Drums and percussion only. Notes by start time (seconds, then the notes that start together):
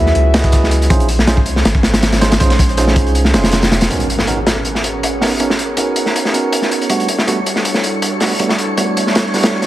0.06 snare
0.15 closed hi-hat
0.34 snare, closed hi-hat
0.39 snare, closed hi-hat
0.44 kick, snare, closed hi-hat
0.52 kick, snare, closed hi-hat
0.63 snare
0.71 closed hi-hat
0.81 snare, closed hi-hat
0.90 kick, closed hi-hat
1.00 closed hi-hat
1.09 closed hi-hat, open hi-hat
1.19 snare
1.27 snare, closed hi-hat
1.37 kick
1.46 closed hi-hat
1.56 snare
1.65 snare, closed hi-hat
1.75 kick
1.83 snare, closed hi-hat
1.94 snare, closed hi-hat
2.02 snare, closed hi-hat
2.12 snare, closed hi-hat
2.21 snare, closed hi-hat
2.31 snare, closed hi-hat
2.40 kick, snare, closed hi-hat
2.50 snare, closed hi-hat
2.59 kick, closed hi-hat
2.69 snare, closed hi-hat
2.77 snare, closed hi-hat
2.87 snare
2.96 kick, closed hi-hat
3.06 closed hi-hat
3.15 closed hi-hat
3.25 snare
3.34 snare, closed hi-hat
3.44 snare, closed hi-hat
3.51 snare, closed hi-hat
3.63 snare, closed hi-hat
3.72 snare, closed hi-hat
3.81 snare, closed hi-hat
3.90 closed hi-hat
4.00 closed hi-hat
4.10 closed hi-hat
4.19 snare
4.27 closed hi-hat
4.47 snare, closed hi-hat
4.65 closed hi-hat
4.75 snare
4.84 closed hi-hat
5.03 closed hi-hat
5.21 snare, open hi-hat
5.40 closed hi-hat
5.50 snare
5.59 closed hi-hat
5.77 closed hi-hat
5.96 closed hi-hat
6.06 snare
6.16 closed hi-hat
6.25 snare
6.34 closed hi-hat
6.53 closed hi-hat
6.62 snare
6.72 closed hi-hat
6.81 closed hi-hat
6.90 closed hi-hat
7.00 closed hi-hat
7.08 closed hi-hat
7.18 snare
7.28 closed hi-hat
7.46 closed hi-hat
7.56 snare
7.65 closed hi-hat
7.74 snare
7.84 closed hi-hat
8.02 closed hi-hat
8.20 snare, open hi-hat
8.40 closed hi-hat
8.49 snare
8.58 closed hi-hat
8.77 closed hi-hat
8.97 closed hi-hat
9.07 snare
9.15 snare, closed hi-hat
9.34 snare, open hi-hat
9.43 snare, closed hi-hat
9.62 snare, open hi-hat